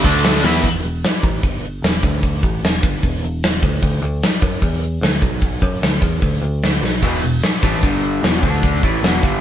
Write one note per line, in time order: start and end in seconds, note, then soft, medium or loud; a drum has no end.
0.04 0.41 D2 medium
0.04 0.43 D3 medium
0.04 0.43 A3 medium
0.04 0.44 D4 medium
0.04 kick loud
0.04 open hi-hat medium
0.23 snare loud
0.23 open hi-hat medium
0.43 0.62 E2 loud
0.43 0.63 E3 loud
0.43 0.64 B3 loud
0.43 0.64 E4 loud
0.43 snare medium
0.63 0.82 E1 medium
0.63 kick medium
0.63 open hi-hat soft
0.83 1.02 E1 medium
1.03 snare loud
1.03 open hi-hat medium
1.23 1.42 A1 loud
1.23 kick loud
1.43 1.80 G1 medium
1.43 kick medium
1.43 open hi-hat soft
1.82 2.01 E1 medium
1.82 snare loud
1.82 open hi-hat medium
2.03 2.40 D2 medium
2.03 kick medium
2.23 kick medium
2.23 open hi-hat soft
2.43 2.61 A1 medium
2.43 kick loud
2.63 2.81 E1 medium
2.63 snare loud
2.63 open hi-hat medium
2.83 3.01 G1 medium
2.83 kick loud
3.03 3.21 E1 medium
3.03 kick medium
3.03 open hi-hat soft
3.23 3.60 E1 medium
3.43 snare loud
3.43 open hi-hat medium
3.62 3.81 D2 medium
3.62 kick loud
3.82 4.01 D2 medium
3.82 kick medium
3.82 open hi-hat soft
4.02 4.21 D2 medium
4.22 snare loud
4.22 open hi-hat medium
4.42 4.61 F#2 medium
4.42 kick loud
4.62 4.99 E2 medium
4.62 kick medium
4.62 open hi-hat medium
5.01 5.20 D2 medium
5.01 snare loud
5.01 open hi-hat soft
5.22 5.59 B1 medium
5.22 kick loud
5.42 kick medium
5.42 open hi-hat soft
5.62 5.81 F#2 medium
5.62 kick medium
5.82 6.01 D2 medium
5.82 snare loud
5.82 open hi-hat medium
6.02 6.21 E2 medium
6.02 kick loud
6.22 6.41 D2 medium
6.22 kick medium
6.22 open hi-hat medium
6.41 6.79 D2 medium
6.62 snare medium
6.62 open hi-hat medium
6.82 7.01 B1 medium
6.82 snare medium
7.02 7.21 E1 medium
7.02 7.22 E2 medium
7.02 7.22 B2 loud
7.02 7.23 E3 loud
7.02 kick medium
7.02 open hi-hat soft
7.02 crash medium
7.22 7.41 E1 medium
7.22 7.39 E2 medium
7.22 7.39 B2 medium
7.42 snare loud
7.42 open hi-hat medium
7.62 7.82 A1 loud
7.62 7.82 A2 medium
7.62 7.82 E3 loud
7.62 7.83 A3 medium
7.62 kick loud
7.83 8.20 G1 medium
7.83 8.22 G2 medium
7.83 8.23 D3 loud
7.83 8.23 G3 medium
7.83 kick loud
7.83 open hi-hat medium
8.23 8.42 E1 medium
8.23 8.42 E2 medium
8.23 8.43 B2 medium
8.23 8.44 E3 medium
8.23 snare loud
8.23 open hi-hat medium
8.43 8.80 D2 medium
8.43 8.83 D3 medium
8.43 8.82 A3 loud
8.43 8.83 D4 loud
8.43 kick medium
8.63 kick loud
8.63 open hi-hat soft
8.83 9.02 A1 medium
8.83 9.03 A2 medium
8.83 9.03 E3 medium
8.83 9.03 A3 medium
8.83 kick loud
9.03 9.22 E1 medium
9.03 9.22 E2 medium
9.03 9.23 B2 medium
9.03 9.23 E3 medium
9.03 snare loud
9.03 open hi-hat medium
9.22 9.41 G1 medium
9.22 9.41 G2 medium
9.22 9.41 D3 loud
9.22 9.41 G3 medium
9.22 kick loud